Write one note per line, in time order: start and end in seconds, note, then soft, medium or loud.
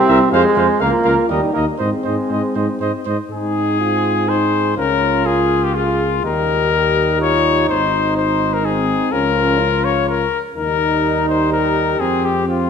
0.00 0.32 C4 loud
0.00 0.29 G4 medium
0.07 0.20 C2 medium
0.07 0.21 A#4 medium
0.07 0.18 E5 medium
0.32 0.43 F2 medium
0.32 0.82 G#3 loud
0.32 0.80 G#4 medium
0.32 0.45 C5 medium
0.32 0.43 F5 medium
0.56 0.68 F2 medium
0.56 0.68 C5 medium
0.56 0.67 F5 medium
0.80 0.92 C#2 medium
0.80 1.29 A#3 loud
0.80 1.31 F4 medium
0.80 0.92 A#4 medium
0.80 0.91 F5 medium
1.04 1.16 C#2 medium
1.04 1.16 A#4 medium
1.04 1.15 F5 medium
1.29 1.41 D#2 medium
1.29 1.53 G3 medium
1.29 1.79 D#4 medium
1.29 1.41 A#4 medium
1.29 1.41 D#5 medium
1.53 1.66 D#2 medium
1.53 1.65 A#3 medium
1.53 1.65 A#4 medium
1.53 1.66 D#5 medium
1.78 1.91 G#2 medium
1.78 3.03 G#3 medium
1.78 3.04 C4 medium
1.78 1.90 C5 medium
1.78 1.91 D#5 medium
2.03 2.17 G#2 medium
2.03 2.15 C5 soft
2.03 2.16 D#5 soft
2.28 2.42 G#2 medium
2.28 2.40 C5 soft
2.28 2.42 D#5 soft
2.55 2.67 G#2 medium
2.55 2.67 C5 soft
2.55 2.68 D#5 soft
2.80 2.92 G#2 medium
2.80 2.92 C5 soft
2.80 2.93 D#5 medium
3.06 3.18 G#2 medium
3.06 3.17 C5 soft
3.06 3.18 D#5 soft
3.31 4.73 G#2 medium
3.31 4.73 C4 medium
3.31 3.77 D#4 medium
3.31 4.30 G#4 medium
3.31 4.73 G#4 medium
3.80 4.28 F4 medium
4.29 4.77 D#4 medium
4.29 4.77 C5 medium
4.77 6.21 C#2 medium
4.77 6.21 A#3 soft
4.77 5.25 C#4 medium
4.77 6.26 F4 medium
4.77 5.27 A#4 medium
5.26 5.73 F4 medium
5.26 5.65 G#4 medium
5.64 5.76 G4 medium
5.75 6.24 F4 medium
5.75 6.26 G#4 medium
6.24 7.65 D#2 medium
6.24 7.71 G3 soft
6.24 9.11 D#4 medium
6.24 6.73 G4 medium
6.24 7.19 A#4 medium
6.73 7.20 G4 medium
7.21 7.67 F4 medium
7.21 7.68 C#5 medium
7.69 8.96 G#1 medium
7.69 9.12 G#3 medium
7.69 8.63 D#4 medium
7.69 8.16 C5 medium
8.17 8.55 C5 medium
8.54 8.67 A#4 medium
8.65 9.14 C4 medium
8.65 9.14 G#4 medium
9.12 10.26 C#2 medium
9.12 10.26 F3 medium
9.12 9.62 C#4 medium
9.12 10.26 F4 medium
9.12 9.86 A#4 medium
9.60 10.28 F4 medium
9.84 10.07 C#5 medium
10.08 10.41 A#4 medium
10.55 11.95 D#2 medium
10.55 11.95 G3 medium
10.55 11.48 D#4 medium
10.55 11.96 D#4 medium
10.55 11.26 A#4 medium
11.29 11.52 C5 medium
11.52 12.70 G4 medium
11.52 12.01 A#4 medium
11.99 12.70 F2 soft
11.99 12.44 G#3 soft
11.99 12.44 C4 soft
11.99 12.27 G#4 medium
12.25 12.48 G4 medium
12.47 12.70 G#3 soft
12.47 12.70 C4 soft
12.47 12.70 F4 medium